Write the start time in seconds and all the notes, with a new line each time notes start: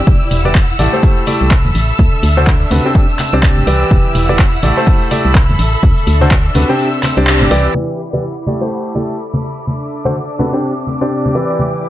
Already playing: G4 D5 E6
0.07 E1 E4, kick, tambourine, high conga
0.31 E1, open hi-hat, tambourine
0.41 F#5, high conga
0.45 E3 E4 G4 B4 D5, tambourine
0.55 kick, clap, tambourine
0.70 tambourine
0.79 A1 A3 E4 G4 A4 D5, open hi-hat, tambourine, high conga
0.93 A3 E4 G4 A4 C5, tambourine
1.03 B5, kick, tambourine
1.15 E5, tambourine
1.27 A3 E4 G4 A4 D5, open hi-hat, tambourine, high conga
1.40 C2, tambourine
1.51 kick, clap, tambourine
1.65 E2, tambourine, high conga
1.75 A1, open hi-hat, tambourine
1.89 tambourine
1.98 D2 D4, kick, tambourine, high conga
2.23 D2, open hi-hat, tambourine
2.37 D3 D4 F#4 A4 C5, tambourine, high conga
2.47 kick, clap, tambourine
2.61 tambourine
2.70 D2 C3 D4 F#4 A4 B4, open hi-hat, tambourine, high conga
2.85 C3 D4 G4 C5 G5, tambourine
2.95 C4, kick, tambourine
3.09 tambourine
3.19 clap, open hi-hat, tambourine, high conga
3.33 C2 C3 D4 G4 C5 D5, tambourine
3.37 G4 D5
3.42 kick, clap, tambourine
3.57 G1, tambourine, high conga
3.67 C2 E3 E4 G4 B4 D5, open hi-hat, tambourine
3.82 tambourine
3.91 E1 E4, kick, tambourine, high conga
4.15 E1, open hi-hat, tambourine
4.25 D5 F#5 B5, tambourine, high conga
4.29 E3 E4 G4 B4
4.39 kick, clap, tambourine
4.53 tambourine
4.63 A1 A3 E4 G4 A4 D5, open hi-hat, tambourine, high conga
4.77 A3 E4 G4 A4 C5, tambourine
4.87 kick, tambourine
4.93 E5
5.01 tambourine
5.11 A3 E4 G4 A4 D5, open hi-hat, tambourine, high conga
5.18 B5
5.25 C2, tambourine
5.35 kick, clap, tambourine
5.49 E2, tambourine, high conga
5.59 A1, open hi-hat, tambourine
5.73 tambourine
5.82 D2 D4, kick, tambourine, high conga
5.97 tambourine
6.07 D2, open hi-hat, tambourine
6.21 D3 D4 F#4 A4 C5, tambourine, high conga
6.31 kick, clap, tambourine
6.45 tambourine
6.55 D2 C3 D4 F#4 A4 B4, open hi-hat, tambourine, high conga
6.69 C3 D4 G4 C5 G5, tambourine
6.79 C4, tambourine
6.93 tambourine
7.03 clap, open hi-hat, tambourine, high conga
7.17 C2 C3 D4 G4 C5 D5, tambourine
7.23 G4 D5, clap, tambourine
7.41 G1, tambourine, high conga
7.51 C2 E3 E4 G4 B4 D5, open hi-hat, tambourine
7.65 tambourine
7.75 E4 D6, tambourine, high conga
7.87 B5, tambourine
7.99 tambourine
8.09 F#5
8.13 E3 E4 G4 B4 D5, tambourine, high conga
8.23 tambourine
8.37 tambourine
8.47 A3 E4 G4 A4 D5, tambourine, high conga
8.61 A3 E4 G4 A4 C5, tambourine
8.85 tambourine
8.95 A3 E4 G4 A4 D5, tambourine, high conga
9.02 E5 B5
9.09 tambourine
9.19 tambourine
9.33 tambourine, high conga
9.43 tambourine
9.57 tambourine
9.67 D4, tambourine, high conga
9.81 tambourine
9.90 tambourine
10.05 D3 D4 F#4 A4 C5, tambourine, high conga
10.15 tambourine
10.29 tambourine
10.39 C3 D4 F#4 A4 B4, tambourine, high conga
10.53 C3 D4 G4 C5 G5, tambourine
10.63 C4, tambourine
10.77 tambourine
10.87 tambourine, high conga
11.01 C3 D4 G4 C5 D5, tambourine
11.07 G4 D5, tambourine
11.25 tambourine, high conga
11.35 E3 E4 G4 B4 D5, tambourine
11.49 tambourine
11.59 E4, tambourine, high conga
11.74 tambourine
11.84 B5, tambourine